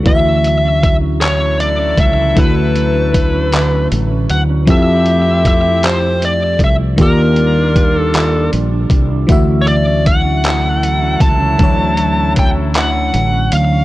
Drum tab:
HH |xxxxxx|xxxxxx|xxxxxx|xxxxxx|
CP |---x--|---x--|---x--|---x--|
BD |o-o--o|o-o---|o-o--o|o-o--o|

HH |xxxxxx|xxxxxx|
CP |---x--|---x--|
BD |o-o--o|o-o---|